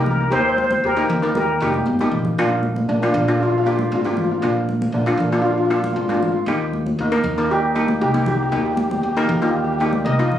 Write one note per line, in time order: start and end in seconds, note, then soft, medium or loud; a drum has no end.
0.00 0.27 C2 loud
0.00 0.17 A#3 medium
0.00 0.16 D#4 medium
0.00 0.17 G4 medium
0.00 0.10 A#4 medium
0.06 low conga medium
0.11 0.18 A#4 medium
0.20 0.26 A#4 medium
0.31 0.79 D#2 loud
0.31 0.70 A#3 medium
0.31 0.70 D#4 medium
0.31 0.38 G4 medium
0.31 0.70 G4 medium
0.31 0.40 C5 loud
0.41 0.48 C5 medium
0.49 0.55 C5 medium
0.57 0.63 C5 medium
0.57 high conga medium
0.64 0.70 C5 medium
0.71 0.77 C5 medium
0.71 high conga medium
0.84 1.06 D#2 medium
0.84 1.31 G4 medium
0.84 1.36 A#4 loud
0.96 1.11 A#3 medium
0.96 1.11 D#4 medium
0.96 1.11 G4 medium
1.09 1.56 D#2 loud
1.09 low conga medium
1.22 1.45 A#3 medium
1.22 1.45 D#4 medium
1.22 1.45 A#4 medium
1.35 1.59 G4 medium
1.35 1.59 A#4 loud
1.35 high conga medium
1.60 1.83 F1 medium
1.60 1.84 A#3 medium
1.60 1.84 D#4 medium
1.60 2.08 D#4 medium
1.60 1.84 G4 medium
1.60 2.09 G4 medium
1.74 high conga medium
1.86 2.09 G1 medium
1.86 high conga medium
1.99 2.22 A#3 medium
1.99 2.23 D#4 medium
1.99 2.23 G4 medium
1.99 high conga medium
2.11 2.34 A#1 medium
2.11 low conga medium
2.25 low conga medium
2.38 2.85 A#1 medium
2.38 2.76 A#3 medium
2.38 2.76 D4 medium
2.38 2.76 F4 loud
2.63 high conga medium
2.76 high conga medium
2.89 3.11 A#1 medium
2.89 2.95 A#3 medium
2.89 2.95 D4 medium
2.96 3.02 D4 medium
3.03 3.17 A#3 medium
3.03 3.17 D4 medium
3.03 3.11 D4 medium
3.03 3.17 F4 medium
3.12 3.87 A#1 loud
3.12 3.19 D4 medium
3.12 low conga medium
3.21 3.27 D4 medium
3.28 3.50 A#3 medium
3.28 3.34 D4 medium
3.28 3.50 D4 medium
3.28 3.51 F4 medium
3.41 3.47 D4 medium
3.41 3.48 F4 loud
3.50 3.56 F4 medium
3.58 3.63 F4 medium
3.64 3.89 A#3 medium
3.64 3.89 D4 medium
3.64 3.71 F4 medium
3.64 3.89 G4 medium
3.72 3.78 F4 medium
3.79 3.87 F4 medium
3.79 high conga medium
3.92 4.38 G#1 loud
3.92 3.99 D4 medium
3.92 4.00 F4 medium
4.01 4.27 A#3 medium
4.01 4.27 D4 medium
4.01 4.07 F4 medium
4.01 high conga medium
4.05 4.14 F4 medium
4.05 4.28 G4 medium
4.16 4.22 F4 medium
4.16 low conga medium
4.24 4.30 F4 medium
4.31 4.37 F4 medium
4.42 4.89 A#1 loud
4.42 4.81 A#3 medium
4.42 4.81 D4 medium
4.42 4.81 F4 medium
4.69 high conga medium
4.82 high conga medium
4.92 5.16 A#1 medium
4.92 5.01 A#3 medium
4.92 5.00 D4 medium
5.01 5.07 D4 medium
5.06 5.21 A#3 medium
5.06 5.21 D4 medium
5.06 5.14 D4 medium
5.06 5.22 F4 medium
5.15 5.91 A#1 loud
5.15 5.22 D4 medium
5.20 5.30 D4 medium
5.20 low conga medium
5.32 5.55 A#3 medium
5.32 5.39 D4 medium
5.32 5.55 D4 medium
5.32 5.55 F4 medium
5.42 5.52 D4 medium
5.42 5.50 F4 loud
5.51 5.56 F4 medium
5.58 5.64 F4 medium
5.65 5.71 F4 medium
5.70 5.93 A#3 medium
5.70 5.93 D4 medium
5.70 5.94 F4 medium
5.70 5.78 F4 medium
5.79 5.87 F4 medium
5.84 high conga medium
5.93 6.43 G#1 medium
5.93 6.03 D4 medium
5.93 6.00 F4 medium
6.01 6.07 F4 medium
6.08 6.32 A#3 medium
6.08 6.32 D4 medium
6.08 6.15 F4 medium
6.08 6.32 F4 medium
6.08 high conga medium
6.17 6.22 F4 medium
6.23 6.31 F4 medium
6.23 low conga medium
6.32 6.39 F4 medium
6.46 6.94 D#2 loud
6.46 6.86 A#3 medium
6.46 6.86 D#4 medium
6.46 6.86 G4 medium
6.73 high conga medium
6.86 high conga medium
6.99 7.21 D#2 medium
6.99 7.47 A#3 medium
6.99 7.50 D#4 medium
7.12 7.27 A#3 medium
7.12 7.27 D#4 medium
7.12 7.27 A#4 medium
7.24 7.97 D#2 medium
7.24 low conga medium
7.38 7.60 A#3 medium
7.38 7.60 D#4 medium
7.38 7.61 A#4 medium
7.51 7.98 D#4 medium
7.51 8.00 G4 loud
7.75 7.98 A#3 medium
7.75 7.98 D#4 medium
7.75 7.99 G4 medium
7.88 high conga medium
8.01 8.48 C2 loud
8.01 8.25 D#4 medium
8.01 8.27 G4 loud
8.14 8.37 A#3 medium
8.14 8.37 D#4 medium
8.14 8.37 G4 medium
8.14 high conga medium
8.26 8.34 D#4 medium
8.26 8.34 G4 loud
8.26 low conga medium
8.35 8.41 G4 medium
8.43 8.48 G4 medium
8.49 8.99 D#2 loud
8.49 8.91 A#3 medium
8.49 8.91 D#4 medium
8.49 8.56 G4 medium
8.49 8.91 G4 medium
8.57 8.64 G4 medium
8.65 8.71 G4 medium
8.72 8.79 G4 medium
8.77 8.86 G4 medium
8.77 high conga medium
8.88 8.93 G4 medium
8.88 high conga medium
8.95 9.00 G4 medium
9.01 9.26 D#2 medium
9.01 9.08 G4 medium
9.09 9.16 G4 medium
9.17 9.31 A#3 medium
9.17 9.32 D#4 medium
9.17 9.24 G4 medium
9.17 9.32 A#4 medium
9.27 10.02 D#2 loud
9.27 9.32 G4 medium
9.27 low conga medium
9.33 9.39 G4 medium
9.41 9.65 A#3 medium
9.41 9.65 D#4 medium
9.41 9.65 F4 medium
9.41 9.47 G4 medium
9.49 9.55 G4 medium
9.56 9.62 G4 medium
9.64 9.70 G4 medium
9.72 9.77 G4 medium
9.79 10.03 A#3 medium
9.79 10.04 D#4 medium
9.79 9.84 G4 medium
9.79 10.04 G4 medium
9.86 9.92 G4 medium
9.93 high conga medium
10.05 10.39 C2 loud
10.05 10.13 A#4 medium
10.05 10.12 D#5 medium
10.13 10.20 D#5 medium
10.19 10.39 A#3 medium
10.19 10.39 D#4 medium
10.19 10.39 F4 medium
10.19 10.28 D#5 medium
10.29 10.34 D#5 medium
10.29 low conga medium
10.35 10.39 D#5 medium